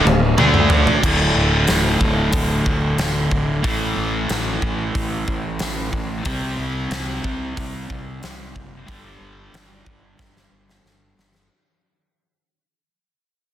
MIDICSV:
0, 0, Header, 1, 4, 480
1, 0, Start_track
1, 0, Tempo, 654308
1, 756, Time_signature, 4, 2, 24, 8
1, 9931, End_track
2, 0, Start_track
2, 0, Title_t, "Overdriven electric guitar"
2, 0, Program_c, 0, 29
2, 29, Note_on_c, 0, 38, 67
2, 37, Note_on_c, 0, 45, 73
2, 226, Note_off_c, 0, 38, 0
2, 230, Note_off_c, 0, 45, 0
2, 279, Note_on_c, 0, 50, 86
2, 285, Note_on_c, 0, 62, 97
2, 286, Note_on_c, 0, 57, 90
2, 749, Note_off_c, 0, 50, 0
2, 752, Note_off_c, 0, 62, 0
2, 753, Note_off_c, 0, 57, 0
2, 759, Note_on_c, 0, 38, 82
2, 767, Note_on_c, 0, 45, 90
2, 777, Note_on_c, 0, 50, 84
2, 2655, Note_off_c, 0, 45, 0
2, 2656, Note_off_c, 0, 38, 0
2, 2664, Note_on_c, 0, 45, 79
2, 2665, Note_off_c, 0, 50, 0
2, 2675, Note_on_c, 0, 52, 84
2, 2681, Note_on_c, 0, 57, 86
2, 4571, Note_off_c, 0, 45, 0
2, 4576, Note_off_c, 0, 52, 0
2, 4579, Note_off_c, 0, 57, 0
2, 4588, Note_on_c, 0, 48, 82
2, 4594, Note_on_c, 0, 55, 82
2, 4599, Note_on_c, 0, 60, 97
2, 6495, Note_off_c, 0, 48, 0
2, 6500, Note_off_c, 0, 60, 0
2, 6502, Note_on_c, 0, 43, 85
2, 6513, Note_off_c, 0, 55, 0
2, 6516, Note_on_c, 0, 50, 87
2, 6519, Note_on_c, 0, 55, 83
2, 8415, Note_off_c, 0, 43, 0
2, 8422, Note_off_c, 0, 50, 0
2, 8424, Note_off_c, 0, 55, 0
2, 9931, End_track
3, 0, Start_track
3, 0, Title_t, "Fingered electric bass"
3, 0, Program_c, 1, 33
3, 45, Note_on_c, 1, 26, 76
3, 265, Note_off_c, 1, 26, 0
3, 280, Note_on_c, 1, 38, 88
3, 728, Note_off_c, 1, 38, 0
3, 761, Note_on_c, 1, 26, 80
3, 984, Note_off_c, 1, 26, 0
3, 997, Note_on_c, 1, 26, 77
3, 1222, Note_off_c, 1, 26, 0
3, 1239, Note_on_c, 1, 26, 85
3, 1463, Note_off_c, 1, 26, 0
3, 1473, Note_on_c, 1, 26, 73
3, 1699, Note_off_c, 1, 26, 0
3, 1715, Note_on_c, 1, 26, 81
3, 1940, Note_off_c, 1, 26, 0
3, 1950, Note_on_c, 1, 26, 79
3, 2177, Note_off_c, 1, 26, 0
3, 2187, Note_on_c, 1, 26, 82
3, 2415, Note_off_c, 1, 26, 0
3, 2428, Note_on_c, 1, 26, 83
3, 2655, Note_off_c, 1, 26, 0
3, 2673, Note_on_c, 1, 33, 79
3, 2898, Note_off_c, 1, 33, 0
3, 2911, Note_on_c, 1, 33, 79
3, 3136, Note_off_c, 1, 33, 0
3, 3154, Note_on_c, 1, 33, 85
3, 3378, Note_off_c, 1, 33, 0
3, 3390, Note_on_c, 1, 33, 78
3, 3616, Note_off_c, 1, 33, 0
3, 3628, Note_on_c, 1, 33, 80
3, 3855, Note_off_c, 1, 33, 0
3, 3869, Note_on_c, 1, 33, 81
3, 4095, Note_off_c, 1, 33, 0
3, 4123, Note_on_c, 1, 33, 82
3, 4342, Note_off_c, 1, 33, 0
3, 4350, Note_on_c, 1, 33, 82
3, 4576, Note_off_c, 1, 33, 0
3, 4589, Note_on_c, 1, 36, 78
3, 4815, Note_off_c, 1, 36, 0
3, 4832, Note_on_c, 1, 36, 82
3, 5057, Note_off_c, 1, 36, 0
3, 5069, Note_on_c, 1, 36, 76
3, 5295, Note_off_c, 1, 36, 0
3, 5313, Note_on_c, 1, 36, 75
3, 5538, Note_off_c, 1, 36, 0
3, 5554, Note_on_c, 1, 36, 86
3, 5778, Note_off_c, 1, 36, 0
3, 5795, Note_on_c, 1, 36, 81
3, 6019, Note_off_c, 1, 36, 0
3, 6040, Note_on_c, 1, 36, 73
3, 6262, Note_off_c, 1, 36, 0
3, 6279, Note_on_c, 1, 30, 81
3, 6502, Note_off_c, 1, 30, 0
3, 6516, Note_on_c, 1, 31, 81
3, 6740, Note_off_c, 1, 31, 0
3, 6750, Note_on_c, 1, 31, 72
3, 6977, Note_off_c, 1, 31, 0
3, 6995, Note_on_c, 1, 31, 77
3, 7220, Note_off_c, 1, 31, 0
3, 7236, Note_on_c, 1, 31, 76
3, 7461, Note_off_c, 1, 31, 0
3, 7473, Note_on_c, 1, 31, 82
3, 7699, Note_off_c, 1, 31, 0
3, 7711, Note_on_c, 1, 31, 73
3, 7939, Note_off_c, 1, 31, 0
3, 7953, Note_on_c, 1, 31, 70
3, 8180, Note_off_c, 1, 31, 0
3, 8196, Note_on_c, 1, 31, 75
3, 8422, Note_off_c, 1, 31, 0
3, 9931, End_track
4, 0, Start_track
4, 0, Title_t, "Drums"
4, 50, Note_on_c, 9, 48, 80
4, 124, Note_off_c, 9, 48, 0
4, 279, Note_on_c, 9, 47, 92
4, 352, Note_off_c, 9, 47, 0
4, 395, Note_on_c, 9, 45, 71
4, 469, Note_off_c, 9, 45, 0
4, 512, Note_on_c, 9, 43, 93
4, 586, Note_off_c, 9, 43, 0
4, 639, Note_on_c, 9, 43, 91
4, 712, Note_off_c, 9, 43, 0
4, 759, Note_on_c, 9, 36, 104
4, 760, Note_on_c, 9, 49, 83
4, 832, Note_off_c, 9, 36, 0
4, 834, Note_off_c, 9, 49, 0
4, 1228, Note_on_c, 9, 46, 51
4, 1236, Note_on_c, 9, 38, 97
4, 1302, Note_off_c, 9, 46, 0
4, 1309, Note_off_c, 9, 38, 0
4, 1473, Note_on_c, 9, 36, 83
4, 1546, Note_off_c, 9, 36, 0
4, 1706, Note_on_c, 9, 46, 55
4, 1712, Note_on_c, 9, 36, 107
4, 1779, Note_off_c, 9, 46, 0
4, 1785, Note_off_c, 9, 36, 0
4, 1952, Note_on_c, 9, 36, 88
4, 2025, Note_off_c, 9, 36, 0
4, 2189, Note_on_c, 9, 46, 46
4, 2197, Note_on_c, 9, 38, 94
4, 2263, Note_off_c, 9, 46, 0
4, 2270, Note_off_c, 9, 38, 0
4, 2431, Note_on_c, 9, 36, 81
4, 2505, Note_off_c, 9, 36, 0
4, 2672, Note_on_c, 9, 36, 99
4, 2672, Note_on_c, 9, 46, 46
4, 2745, Note_off_c, 9, 36, 0
4, 2745, Note_off_c, 9, 46, 0
4, 3151, Note_on_c, 9, 46, 42
4, 3158, Note_on_c, 9, 38, 94
4, 3224, Note_off_c, 9, 46, 0
4, 3231, Note_off_c, 9, 38, 0
4, 3391, Note_on_c, 9, 36, 84
4, 3464, Note_off_c, 9, 36, 0
4, 3632, Note_on_c, 9, 36, 102
4, 3632, Note_on_c, 9, 46, 44
4, 3705, Note_off_c, 9, 36, 0
4, 3705, Note_off_c, 9, 46, 0
4, 3871, Note_on_c, 9, 36, 80
4, 3945, Note_off_c, 9, 36, 0
4, 4103, Note_on_c, 9, 46, 46
4, 4111, Note_on_c, 9, 38, 92
4, 4177, Note_off_c, 9, 46, 0
4, 4184, Note_off_c, 9, 38, 0
4, 4349, Note_on_c, 9, 36, 77
4, 4422, Note_off_c, 9, 36, 0
4, 4586, Note_on_c, 9, 46, 45
4, 4589, Note_on_c, 9, 36, 100
4, 4659, Note_off_c, 9, 46, 0
4, 4663, Note_off_c, 9, 36, 0
4, 5069, Note_on_c, 9, 46, 47
4, 5076, Note_on_c, 9, 38, 94
4, 5142, Note_off_c, 9, 46, 0
4, 5150, Note_off_c, 9, 38, 0
4, 5314, Note_on_c, 9, 36, 83
4, 5387, Note_off_c, 9, 36, 0
4, 5555, Note_on_c, 9, 36, 103
4, 5560, Note_on_c, 9, 46, 48
4, 5628, Note_off_c, 9, 36, 0
4, 5633, Note_off_c, 9, 46, 0
4, 5796, Note_on_c, 9, 36, 82
4, 5869, Note_off_c, 9, 36, 0
4, 6036, Note_on_c, 9, 46, 45
4, 6043, Note_on_c, 9, 38, 89
4, 6109, Note_off_c, 9, 46, 0
4, 6116, Note_off_c, 9, 38, 0
4, 6278, Note_on_c, 9, 36, 75
4, 6351, Note_off_c, 9, 36, 0
4, 6517, Note_on_c, 9, 36, 101
4, 6518, Note_on_c, 9, 46, 45
4, 6591, Note_off_c, 9, 36, 0
4, 6592, Note_off_c, 9, 46, 0
4, 6999, Note_on_c, 9, 46, 42
4, 7007, Note_on_c, 9, 38, 92
4, 7073, Note_off_c, 9, 46, 0
4, 7080, Note_off_c, 9, 38, 0
4, 7236, Note_on_c, 9, 36, 80
4, 7310, Note_off_c, 9, 36, 0
4, 7477, Note_on_c, 9, 36, 102
4, 7481, Note_on_c, 9, 38, 55
4, 7550, Note_off_c, 9, 36, 0
4, 7554, Note_off_c, 9, 38, 0
4, 7605, Note_on_c, 9, 38, 48
4, 7678, Note_off_c, 9, 38, 0
4, 7846, Note_on_c, 9, 38, 57
4, 7919, Note_off_c, 9, 38, 0
4, 7967, Note_on_c, 9, 38, 66
4, 8040, Note_off_c, 9, 38, 0
4, 8209, Note_on_c, 9, 38, 77
4, 8283, Note_off_c, 9, 38, 0
4, 8324, Note_on_c, 9, 38, 69
4, 8398, Note_off_c, 9, 38, 0
4, 9931, End_track
0, 0, End_of_file